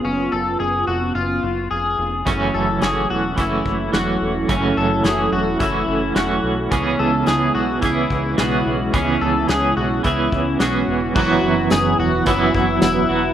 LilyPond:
<<
  \new Staff \with { instrumentName = "Clean electric guitar" } { \time 4/4 \key fis \minor \tempo 4 = 108 cis'8 a'8 gis'8 fis'8 eis'4 gis'4 | cis'8 a'8 gis'8 fis'8 e'4 fis'4 | cis'8 a'8 gis'8 fis'8 e'4 fis'4 | cis'8 a'8 gis'8 fis'8 e'4 fis'4 |
cis'8 a'8 gis'8 fis'8 e'4 fis'4 | fis'4 gis'8 fis'8 e'8 e'8 e'4 | }
  \new Staff \with { instrumentName = "Analog synth pad" } { \time 4/4 \key fis \minor << { <b cis' eis'>1 | <fis cis' a'>1~ | <fis cis' a'>1 | <cis gis e'>1~ |
<cis gis e'>1 | <e' fis' fis''>1 | } \\ { r1 | e'1~ | e'1 | b1 |
cis'1 | b'1 | } >> }
  \new Staff \with { instrumentName = "Clean electric guitar" } { \time 4/4 \key fis \minor r1 | <fis, cis e a cis' fis'>4 <e a cis' fis'>4 <e a cis' fis'>4 <e a cis' fis'>4 | <fis, cis e a cis' fis'>4 <e a cis' fis'>4 <e a cis' fis'>4 <e a cis' fis'>4 | <cis e b cis' gis'>4 <e b cis' gis'>4 <e b cis' gis'>4 <e b cis' gis'>4 |
<cis e b cis' gis'>4 <e b cis' gis'>4 <e b cis' gis'>4 <e b cis' gis'>4 | <fis, e fis b e' fis'>2 <fis, e fis b e' fis'>4. <fis b e' fis'>8 | }
  \new Staff \with { instrumentName = "Analog synth bass" } { \clef bass \time 4/4 \key fis \minor fis,,8 fis,,8 fis,,8 eis,,8 fis,,8 fis,,8 eis,,8 eis,,8 | fis,,8 fis,,8 fis,,8 e,,8 fis,,8 fis,,8 e,,8 e,,8 | fis,,8 fis,,8 fis,,8 e,,8 fis,,8 fis,,8 e,,8 b,,8 | cis,8 cis,8 cis,8 b,,8 cis,8 cis,8 b,,8 b,,8 |
cis,8 cis,8 cis,8 b,,8 cis,8 cis,8 b,,8 e,,8 | fis,,8 fis,,8 fis,,8 e,,8 fis,,8 fis,,8 e,,8 e,,8 | }
  \new DrumStaff \with { instrumentName = "Drums" } \drummode { \time 4/4 r4 r4 r4 r4 | <hh bd>4 <hh sn>4 <hh bd>8 bd8 <hh sn>4 | <hh bd>4 <hh sn>4 <hh bd>4 <hh sn>4 | <hh bd>4 <hh sn>4 <hh bd>8 bd8 <hh sn>4 |
<hh bd>4 <hh sn>4 <hh bd>8 bd8 <hh sn>4 | <cymc bd>4 <hh sn tamb>4 <hh bd>8 bd8 <hh sn tamb>4 | }
>>